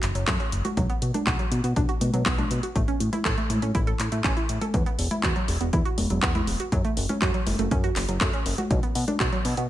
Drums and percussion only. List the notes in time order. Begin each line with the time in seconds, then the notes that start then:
0.03 clap, closed hi-hat
0.15 closed hi-hat
0.28 kick, clap, closed hi-hat
0.40 closed hi-hat
0.52 closed hi-hat
0.65 closed hi-hat, high conga
0.77 kick, closed hi-hat
0.90 closed hi-hat
1.02 closed hi-hat
1.14 closed hi-hat, high conga
1.27 kick, clap, closed hi-hat
1.39 closed hi-hat
1.52 closed hi-hat
1.64 closed hi-hat
1.76 kick, closed hi-hat
1.89 closed hi-hat
2.01 closed hi-hat, high conga
2.14 closed hi-hat
2.26 kick, clap, closed hi-hat
2.38 closed hi-hat, high conga
2.51 closed hi-hat
2.63 closed hi-hat
2.76 kick, closed hi-hat
2.88 closed hi-hat
3.00 closed hi-hat
3.13 closed hi-hat, high conga
3.25 kick, clap, closed hi-hat
3.38 closed hi-hat
3.50 closed hi-hat, high conga
3.62 closed hi-hat
3.75 kick, closed hi-hat
3.87 closed hi-hat
4.00 clap, closed hi-hat
4.12 closed hi-hat
4.24 kick, clap, closed hi-hat
4.37 closed hi-hat
4.49 closed hi-hat
4.61 closed hi-hat, high conga
4.74 kick, closed hi-hat
4.86 closed hi-hat
4.99 open hi-hat
5.11 closed hi-hat, high conga
5.23 kick, clap, closed hi-hat
5.36 closed hi-hat
5.48 open hi-hat
5.61 closed hi-hat
5.73 kick, closed hi-hat
5.85 closed hi-hat
5.98 open hi-hat, high conga
6.10 closed hi-hat
6.23 kick, clap, closed hi-hat
6.35 closed hi-hat, high conga
6.47 open hi-hat
6.60 closed hi-hat
6.72 kick, closed hi-hat
6.85 closed hi-hat
6.97 open hi-hat
7.09 closed hi-hat, high conga
7.22 kick, clap, closed hi-hat
7.34 closed hi-hat
7.47 open hi-hat, high conga
7.59 closed hi-hat
7.71 kick, closed hi-hat
7.84 closed hi-hat
7.96 clap, open hi-hat
8.09 closed hi-hat
8.21 kick, clap, closed hi-hat
8.33 closed hi-hat
8.46 open hi-hat
8.58 closed hi-hat, high conga
8.71 kick, closed hi-hat
8.83 closed hi-hat
8.95 open hi-hat
9.08 closed hi-hat, high conga
9.20 kick, clap, closed hi-hat
9.33 closed hi-hat
9.45 open hi-hat
9.57 closed hi-hat